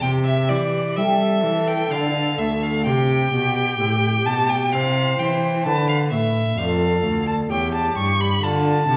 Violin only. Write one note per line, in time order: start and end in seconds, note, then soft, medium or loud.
0.02 0.10 G5 medium
0.25 0.50 E5 medium
0.49 0.98 D5 medium
0.96 1.69 E5 medium
1.67 1.92 G5 medium
1.91 2.40 F5 medium
2.38 2.65 E5 medium
2.63 2.86 F5 medium
2.86 4.28 G5 medium
4.26 4.51 A5 medium
4.49 4.74 G5 medium
4.73 5.21 F5 medium
5.19 5.65 G5 medium
5.65 5.88 A5 medium
5.88 5.96 F5 medium
6.11 6.59 E5 medium
6.57 7.27 F5 medium
7.27 7.35 A5 medium
7.50 7.73 G5 medium
7.74 7.97 A5 medium
7.98 8.22 C#6 medium
8.21 8.45 B5 medium
8.43 8.97 A5 medium